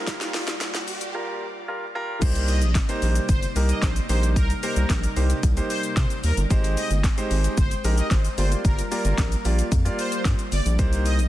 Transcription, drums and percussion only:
0.07 kick loud
0.07 snare loud
0.07 closed hi-hat medium
0.07 shaker medium
0.21 snare loud
0.21 closed hi-hat medium
0.21 shaker medium
0.34 snare loud
0.34 open hi-hat medium
0.34 shaker medium
0.34 shaker soft
0.47 snare loud
0.47 closed hi-hat soft
0.47 shaker medium
0.61 snare loud
0.61 closed hi-hat medium
0.61 shaker medium
0.74 snare loud
0.74 closed hi-hat medium
0.74 shaker medium
0.88 open hi-hat medium
0.88 shaker soft
1.01 closed hi-hat medium
1.01 shaker medium
1.01 shaker soft
2.22 kick loud
2.22 closed hi-hat medium
2.22 crash loud
2.22 shaker medium
2.35 closed hi-hat medium
2.35 shaker soft
2.35 shaker medium
2.48 open hi-hat medium
2.48 shaker medium
2.48 shaker soft
2.62 closed hi-hat soft
2.62 shaker medium
2.75 kick loud
2.75 snare loud
2.75 clap loud
2.75 closed hi-hat medium
2.75 shaker medium
2.89 closed hi-hat medium
2.89 shaker medium
3.02 open hi-hat medium
3.02 shaker soft
3.15 closed hi-hat medium
3.15 shaker medium
3.15 shaker soft
3.29 kick loud
3.29 closed hi-hat medium
3.29 shaker medium
3.43 closed hi-hat soft
3.43 shaker soft
3.56 open hi-hat medium
3.56 shaker medium
3.56 shaker soft
3.69 closed hi-hat medium
3.69 shaker medium
3.82 kick loud
3.82 snare loud
3.82 clap loud
3.82 closed hi-hat medium
3.82 shaker medium
3.96 closed hi-hat medium
3.96 shaker medium
3.96 shaker soft
4.09 open hi-hat medium
4.09 shaker medium
4.09 shaker soft
4.23 closed hi-hat medium
4.23 shaker medium
4.36 kick loud
4.36 closed hi-hat medium
4.36 shaker medium
4.50 closed hi-hat medium
4.50 shaker soft
4.50 shaker medium
4.63 open hi-hat medium
4.63 shaker medium
4.63 shaker soft
4.76 closed hi-hat soft
4.76 shaker medium
4.90 kick loud
4.90 snare loud
4.90 clap loud
4.90 closed hi-hat medium
4.90 shaker medium
5.03 closed hi-hat medium
5.03 shaker medium
5.16 open hi-hat medium
5.16 shaker soft
5.30 closed hi-hat medium
5.30 shaker medium
5.30 shaker soft
5.43 kick loud
5.43 closed hi-hat medium
5.43 shaker medium
5.57 closed hi-hat medium
5.57 shaker soft
5.57 shaker medium
5.70 open hi-hat medium
5.70 shaker medium
5.70 shaker soft
5.83 closed hi-hat medium
5.83 shaker medium
5.97 kick loud
5.97 snare medium
5.97 clap loud
5.97 closed hi-hat medium
5.97 shaker medium
6.10 closed hi-hat medium
6.10 shaker medium
6.24 open hi-hat medium
6.24 shaker medium
6.24 shaker soft
6.37 closed hi-hat medium
6.37 shaker medium
6.50 kick loud
6.50 closed hi-hat medium
6.50 shaker medium
6.64 closed hi-hat medium
6.64 shaker soft
6.64 shaker medium
6.77 open hi-hat medium
6.77 shaker medium
6.77 shaker soft
6.91 closed hi-hat soft
6.91 shaker medium
7.04 kick loud
7.04 snare loud
7.04 clap loud
7.04 closed hi-hat medium
7.04 shaker medium
7.18 closed hi-hat medium
7.18 shaker medium
7.31 open hi-hat medium
7.31 shaker soft
7.44 closed hi-hat medium
7.44 shaker medium
7.44 shaker soft
7.57 kick loud
7.57 closed hi-hat medium
7.57 shaker medium
7.71 closed hi-hat soft
7.71 shaker soft
7.71 shaker medium
7.84 open hi-hat medium
7.84 shaker soft
7.84 shaker medium
7.98 closed hi-hat medium
7.98 shaker medium
8.11 kick loud
8.11 snare medium
8.11 clap loud
8.11 closed hi-hat medium
8.11 shaker medium
8.25 closed hi-hat medium
8.25 shaker medium
8.25 shaker soft
8.38 open hi-hat medium
8.38 shaker medium
8.38 shaker soft
8.52 closed hi-hat medium
8.52 shaker medium
8.65 kick loud
8.65 closed hi-hat medium
8.65 shaker medium
8.78 closed hi-hat medium
8.78 shaker medium
8.92 open hi-hat medium
8.92 shaker medium
9.05 closed hi-hat soft
9.05 shaker medium
9.18 kick loud
9.18 snare loud
9.18 clap loud
9.18 closed hi-hat medium
9.18 shaker medium
9.32 closed hi-hat medium
9.32 shaker medium
9.45 open hi-hat medium
9.45 shaker soft
9.59 closed hi-hat medium
9.59 shaker soft
9.59 shaker medium
9.72 kick loud
9.72 closed hi-hat medium
9.72 shaker medium
9.85 closed hi-hat medium
9.85 shaker soft
9.99 open hi-hat medium
9.99 shaker medium
10.12 closed hi-hat medium
10.12 shaker medium
10.25 kick loud
10.25 snare loud
10.25 clap loud
10.25 closed hi-hat medium
10.25 shaker medium
10.39 closed hi-hat medium
10.39 shaker medium
10.39 shaker soft
10.52 open hi-hat medium
10.52 shaker medium
10.52 shaker soft
10.65 closed hi-hat medium
10.65 shaker medium
10.79 kick loud
10.79 closed hi-hat medium
10.79 shaker medium
10.93 closed hi-hat medium
10.93 shaker medium
11.06 open hi-hat medium
11.06 shaker medium
11.06 shaker soft
11.19 closed hi-hat soft
11.19 shaker medium

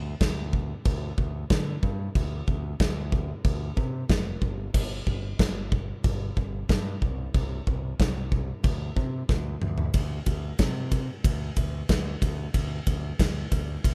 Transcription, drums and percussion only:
0.21 kick loud
0.21 snare loud
0.21 china medium
0.53 kick medium
0.85 kick loud
0.85 china medium
1.18 kick medium
1.50 kick loud
1.50 snare loud
1.50 china medium
1.83 kick medium
2.15 kick loud
2.15 china medium
2.48 kick medium
2.80 kick loud
2.80 snare loud
2.80 china medium
3.12 kick loud
3.45 kick loud
3.45 china medium
3.77 kick medium
4.09 kick loud
4.09 snare loud
4.09 china medium
4.42 kick medium
4.74 kick loud
4.74 china medium
4.74 crash loud
5.07 kick medium
5.39 kick loud
5.39 snare loud
5.39 china medium
5.72 kick loud
6.04 kick loud
6.04 china medium
6.37 kick medium
6.69 kick loud
6.69 snare loud
6.69 china medium
7.02 kick medium
7.34 kick loud
7.34 china medium
7.67 kick medium
8.00 kick loud
8.00 snare loud
8.00 china medium
8.32 kick medium
8.64 kick loud
8.64 china medium
8.97 kick loud
9.29 kick loud
9.29 snare medium
9.62 mid tom medium
9.78 floor tom medium
9.94 kick loud
9.94 ride loud
10.26 kick medium
10.26 ride medium
10.59 kick loud
10.59 snare loud
10.59 ride loud
10.92 kick medium
10.92 ride medium
11.24 kick loud
11.24 ride loud
11.56 kick medium
11.56 ride medium
11.89 kick loud
11.89 snare loud
11.89 ride medium
12.22 kick medium
12.22 ride medium
12.54 kick loud
12.54 ride loud
12.87 kick medium
12.87 ride medium
13.19 kick loud
13.19 snare loud
13.19 ride loud
13.52 kick medium
13.52 ride medium
13.84 kick loud
13.84 ride loud

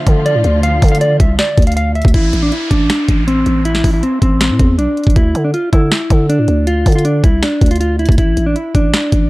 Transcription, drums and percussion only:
0.07 kick medium
0.07 closed hi-hat medium
0.26 closed hi-hat medium
0.44 closed hi-hat medium
0.63 closed hi-hat medium
0.82 kick loud
0.82 closed hi-hat medium
0.82 open hi-hat medium
0.88 closed hi-hat medium
0.95 closed hi-hat medium
1.01 closed hi-hat medium
1.20 kick loud
1.20 closed hi-hat loud
1.39 finger snap loud
1.39 snare loud
1.39 closed hi-hat medium
1.58 kick loud
1.58 closed hi-hat medium
1.62 closed hi-hat medium
1.67 closed hi-hat medium
1.72 closed hi-hat medium
1.77 closed hi-hat medium
1.95 closed hi-hat soft
2.02 kick loud
2.02 closed hi-hat medium
2.08 closed hi-hat medium
2.14 kick loud
2.14 closed hi-hat medium
2.33 closed hi-hat medium
2.52 closed hi-hat medium
2.71 kick loud
2.71 closed hi-hat medium
2.90 finger snap medium
2.90 snare loud
2.90 closed hi-hat medium
3.09 kick medium
3.09 closed hi-hat medium
3.28 closed hi-hat medium
3.46 closed hi-hat medium
3.65 closed hi-hat medium
3.75 snare medium
3.84 kick medium
3.84 open hi-hat medium
4.03 closed hi-hat medium
4.22 kick loud
4.22 closed hi-hat medium
4.41 finger snap medium
4.41 snare loud
4.41 closed hi-hat medium
4.59 kick medium
4.59 closed hi-hat medium
4.79 closed hi-hat medium
4.97 closed hi-hat soft
5.04 kick loud
5.04 closed hi-hat medium
5.10 closed hi-hat medium
5.16 kick loud
5.16 closed hi-hat medium
5.35 closed hi-hat medium
5.54 closed hi-hat medium
5.73 kick loud
5.73 closed hi-hat medium
5.92 finger snap medium
5.92 snare loud
5.92 closed hi-hat medium
6.10 kick medium
6.10 closed hi-hat medium
6.30 closed hi-hat medium
6.48 closed hi-hat medium
6.67 closed hi-hat medium
6.86 kick medium
6.86 closed hi-hat medium
6.86 open hi-hat medium
6.92 closed hi-hat medium
6.99 closed hi-hat medium
7.05 closed hi-hat medium
7.24 kick loud
7.24 closed hi-hat loud
7.43 finger snap medium
7.43 snare loud
7.43 closed hi-hat medium
7.61 kick medium
7.61 closed hi-hat medium
7.66 closed hi-hat medium
7.71 closed hi-hat medium
7.76 closed hi-hat medium
7.81 closed hi-hat medium
7.99 closed hi-hat soft
8.05 kick loud
8.05 closed hi-hat medium
8.12 closed hi-hat medium
8.18 kick loud
8.18 closed hi-hat medium
8.37 closed hi-hat medium
8.56 closed hi-hat medium
8.75 kick loud
8.75 closed hi-hat medium
8.94 finger snap medium
8.94 snare loud
8.94 closed hi-hat medium
9.12 kick medium
9.12 closed hi-hat medium

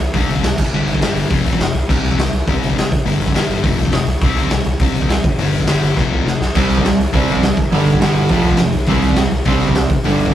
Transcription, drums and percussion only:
0.14 kick loud
0.14 open hi-hat medium
0.29 open hi-hat medium
0.36 kick medium
0.44 snare loud
0.44 open hi-hat medium
0.58 kick loud
0.58 crash loud
0.88 open hi-hat medium
0.94 kick medium
1.02 snare loud
1.02 open hi-hat medium
1.16 open hi-hat medium
1.30 kick loud
1.30 open hi-hat medium
1.46 open hi-hat medium
1.53 kick medium
1.60 snare loud
1.60 open hi-hat medium
1.75 open hi-hat medium
1.89 kick loud
1.89 crash loud
2.05 open hi-hat medium
2.11 kick medium
2.19 snare loud
2.19 open hi-hat medium
2.33 open hi-hat medium
2.48 kick loud
2.48 open hi-hat medium
2.63 open hi-hat medium
2.70 kick medium
2.78 snare loud
2.78 open hi-hat medium
2.92 kick loud
2.92 open hi-hat medium
3.07 open hi-hat medium
3.21 open hi-hat medium
3.28 kick medium
3.35 snare loud
3.35 open hi-hat medium
3.50 open hi-hat medium
3.64 kick loud
3.64 open hi-hat medium
3.79 open hi-hat medium
3.85 kick medium
3.92 snare loud
3.92 open hi-hat medium
4.07 open hi-hat medium
4.21 kick loud
4.21 open hi-hat medium
4.36 open hi-hat medium
4.44 kick medium
4.50 snare loud
4.50 open hi-hat medium
4.64 open hi-hat medium
4.80 kick loud
4.80 open hi-hat medium
4.95 open hi-hat medium
5.02 kick medium
5.10 snare loud
5.10 open hi-hat medium
5.24 kick loud
5.24 open hi-hat medium
5.39 open hi-hat medium
5.53 open hi-hat medium
5.61 kick medium
5.67 snare loud
5.67 open hi-hat medium
5.82 open hi-hat medium
5.97 kick loud
5.97 snare medium
6.27 snare medium
6.42 snare medium
6.55 kick loud
6.55 open hi-hat medium
6.55 crash medium
6.70 open hi-hat medium
6.78 kick medium
6.85 snare loud
6.85 open hi-hat medium
7.01 open hi-hat medium
7.14 kick loud
7.14 open hi-hat medium
7.28 open hi-hat medium
7.35 kick medium
7.43 snare loud
7.43 open hi-hat medium
7.57 kick loud
7.57 open hi-hat medium
7.72 open hi-hat medium
7.86 open hi-hat medium
7.93 kick medium
8.01 snare loud
8.01 open hi-hat medium
8.15 open hi-hat medium
8.29 kick loud
8.29 open hi-hat medium
8.43 open hi-hat medium
8.51 kick medium
8.57 snare loud
8.57 open hi-hat medium
8.72 open hi-hat medium
8.87 kick loud
8.87 open hi-hat medium
9.02 open hi-hat medium
9.09 kick medium
9.16 snare loud
9.16 open hi-hat medium
9.31 open hi-hat medium
9.45 kick loud
9.45 open hi-hat medium
9.60 open hi-hat medium
9.68 kick medium
9.75 snare loud
9.75 open hi-hat medium
9.90 kick loud
9.90 open hi-hat medium
10.04 open hi-hat medium
10.19 open hi-hat medium
10.26 kick medium

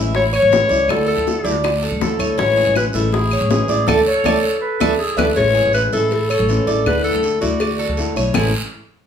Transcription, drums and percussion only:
0.15 high bongo medium
0.15 long guiro medium
0.34 claves medium
0.52 high bongo medium
0.52 low bongo medium
0.52 short guiro medium
0.71 high bongo soft
0.71 short guiro medium
0.89 high bongo medium
0.89 long guiro medium
0.89 claves medium
1.09 high bongo soft
1.27 high bongo medium
1.27 short guiro medium
1.46 high bongo soft
1.46 short guiro medium
1.64 high bongo medium
1.64 long guiro medium
1.64 claves medium
1.83 high bongo soft
2.01 high bongo medium
2.01 low bongo medium
2.01 short guiro medium
2.20 short guiro medium
2.20 claves medium
2.38 high bongo medium
2.38 long guiro medium
2.58 high bongo soft
2.75 high bongo medium
2.75 short guiro medium
2.75 claves medium
2.93 high bongo soft
2.93 short guiro medium
3.13 high bongo medium
3.13 long guiro medium
3.31 claves medium
3.50 high bongo medium
3.50 low bongo medium
3.50 short guiro medium
3.68 high bongo soft
3.68 short guiro medium
3.87 low bongo loud
3.87 long guiro loud
3.87 claves loud
4.24 low bongo medium
4.24 long guiro loud
4.24 claves medium
4.81 low bongo loud
4.81 long guiro medium
4.81 claves loud
5.18 low bongo loud
5.18 long guiro loud
5.18 claves medium
5.36 cowbell loud
5.36 long guiro medium
5.73 cowbell medium
5.73 short guiro medium
5.73 claves medium
5.93 short guiro medium
6.11 cowbell loud
6.11 long guiro medium
6.31 claves medium
6.49 cowbell medium
6.49 short guiro medium
6.67 cowbell medium
6.67 short guiro medium
6.86 cowbell loud
6.86 long guiro medium
6.86 claves medium
7.23 cowbell medium
7.23 short guiro medium
7.42 cowbell medium
7.42 short guiro medium
7.60 cowbell loud
7.60 long guiro medium
7.60 claves medium
7.97 cowbell medium
7.97 short guiro medium
8.16 short guiro medium
8.16 claves medium
8.34 low bongo loud
8.34 long guiro loud
8.34 claves loud

